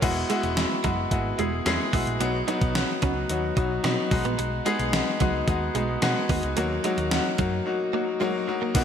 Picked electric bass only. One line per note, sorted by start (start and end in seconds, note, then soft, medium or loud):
0.02 0.23 E1 medium
0.43 0.64 E1 medium
0.84 1.05 F#1 medium
1.11 1.32 G#1 medium
1.39 1.59 E1 medium
1.66 1.76 E2 loud
1.93 2.04 B1 medium
2.07 2.17 A#1 medium
2.20 2.41 B1 medium
2.62 2.82 B1 medium
3.03 3.23 C#2 medium
3.30 3.50 D#2 medium
3.57 3.77 B1 medium
3.84 3.94 B2 medium
4.11 4.22 B1 medium
4.25 4.35 A#1 medium
4.39 4.59 B1 loud
4.80 5.00 B1 medium
5.21 5.41 C#2 medium
5.48 5.68 D#2 medium
5.75 5.95 B1 medium
6.02 6.13 B2 medium
6.29 6.40 D#2 medium
6.43 6.54 C#2 medium
6.57 6.77 D#2 loud
6.98 7.18 D#2 medium
7.39 7.59 F#2 medium
8.75 8.84 B1 loud